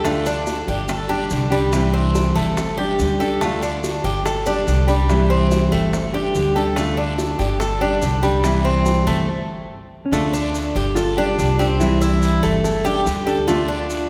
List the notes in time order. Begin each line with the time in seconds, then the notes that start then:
Already playing: D2
0.04 D3 A3 D4 F4, high bongo, long guiro, maracas
0.25 D4, high bongo, maracas
0.47 high bongo, short guiro, maracas
0.68 G1 G4, short guiro, maracas
0.88 A4, muted nylon-string guitar stroke, high bongo, long guiro, maracas
1.09 G3 D4 G4, high bongo
1.30 C2 D3 G3 D4 G4, high bongo, low bongo, short guiro, maracas
1.50 G3 D4 G4, high bongo, short guiro, maracas
1.72 C3 E3 G3 C4 E4, high bongo, long guiro, maracas
1.93 C4, high bongo
2.15 high bongo, short guiro, maracas
2.35 G1 A3, short guiro, maracas
2.57 muted nylon-string guitar stroke, high bongo, long guiro, maracas
2.78 G3 D4 G4, high bongo
2.99 D2 D3 G3 D4 G4, high bongo, low bongo, short guiro, maracas
3.20 G3 D4 G4 A4, high bongo, short guiro, maracas
3.41 D3 A3 D4 F4, high bongo, long guiro, maracas
3.62 D4, high bongo, maracas
3.84 high bongo, short guiro, maracas
4.04 G1 G4, short guiro, maracas
4.25 A4, muted nylon-string guitar stroke, high bongo, maracas
4.46 G3 D4 G4, high bongo, maracas
4.67 C2 D3 G3 D4 G4, high bongo, low bongo, short guiro, maracas
4.87 G3 D4 G4, high bongo, short guiro, maracas
5.08 C3 E3 G3 C4 E4, high bongo, long guiro, maracas
5.30 C4, high bongo
5.51 high bongo, short guiro, maracas
5.72 G1 A3, short guiro, maracas
5.93 muted nylon-string guitar stroke, high bongo, long guiro, maracas
6.13 G3 D4 G4, high bongo
6.35 D2 D3 G3 D4 G4, high bongo, low bongo, short guiro, maracas
6.55 G3 D4 G4 A4, high bongo, short guiro, maracas
6.76 D3 A3 D4 F4, high bongo, long guiro, maracas
6.97 D4, high bongo
7.18 high bongo, short guiro, maracas
7.39 G1 G4, short guiro, maracas
7.60 A4, muted nylon-string guitar stroke, high bongo, long guiro, maracas
7.81 G3 D4 G4, high bongo
8.02 C2 D3 G3 D4 G4, high bongo, low bongo, short guiro, maracas
8.22 G3 D4 G4, high bongo, short guiro, maracas
8.43 C3 E3 G3 C4 E4, high bongo, long guiro, maracas
8.65 C4, high bongo
8.86 high bongo, short guiro, maracas
9.07 G1 A3, short guiro, maracas
10.06 C#4
10.11 D2 D3 A3 D4 F4, cowbell, long guiro, maracas
10.33 D4, maracas
10.55 cowbell, short guiro, maracas
10.75 G1 G4, short guiro, maracas
10.95 F4 A4, muted nylon-string guitar stroke, cowbell, long guiro, maracas
11.17 G3 D4 G4
11.38 C2 D3 G3 D4 G4, cowbell, short guiro, maracas
11.59 G3 C4 D4 G4, cowbell, short guiro, maracas
11.79 C3 E3 G3 C4 E4, cowbell, maracas
12.01 E4, maracas
12.22 cowbell, short guiro, maracas
12.43 G1 A3, short guiro, maracas
12.64 A4, muted nylon-string guitar stroke, cowbell, long guiro, maracas
12.84 G3 D4 G4, maracas
13.05 D2 D3 G3 D4 G4, cowbell, short guiro, maracas
13.26 G3 D4 G4 A4, cowbell, short guiro, maracas
13.47 D3 A3 D4 F4, cowbell, long guiro, maracas
13.68 D4
13.90 cowbell, short guiro, maracas